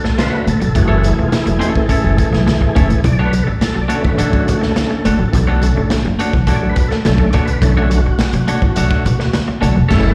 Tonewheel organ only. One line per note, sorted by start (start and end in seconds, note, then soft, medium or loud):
0.00 0.20 A4 medium
0.21 0.46 B4 loud
0.50 0.63 A4 medium
0.64 0.78 A4 medium
0.76 3.01 E3 medium
0.76 3.01 A3 medium
0.76 1.07 F#4 loud
0.76 3.01 G#4 medium
1.07 1.20 E4 medium
1.22 1.35 F4 medium
1.36 1.64 E4 medium
1.64 1.70 F#4 medium
1.78 2.30 A4 loud
3.06 3.25 D5 loud
3.25 3.44 B4 medium
3.44 3.52 A4 medium
3.63 3.82 A4 medium
3.81 3.99 D5 loud
3.91 4.72 D3 medium
3.91 4.73 A3 medium
3.91 4.73 C#4 medium
4.01 4.20 B4 medium
4.19 4.39 A4 loud
4.39 4.58 F#4 medium
4.59 5.97 A4 medium
4.77 5.02 D3 medium
4.77 5.03 A3 medium
4.77 5.03 C#4 medium
5.62 6.00 D3 medium
5.62 6.00 A3 soft
5.62 6.01 C#4 medium
6.50 6.58 D5 loud
6.70 6.88 B4 medium
6.88 6.96 A4 medium
7.06 7.31 D3 medium
7.06 7.32 A3 medium
7.06 7.32 C#4 medium
7.06 7.26 A4 loud
7.26 7.45 D5 medium
7.45 7.64 B4 medium
7.63 8.00 D3 medium
7.63 8.01 A3 medium
7.63 8.01 C#4 medium
7.63 7.83 A4 loud
7.83 8.01 F#4 medium
8.02 9.40 F#4 medium
9.91 10.14 G#3 medium
9.91 10.14 A3 medium
9.91 10.14 E4 medium
9.91 10.11 C#5 loud
10.10 10.14 B4 medium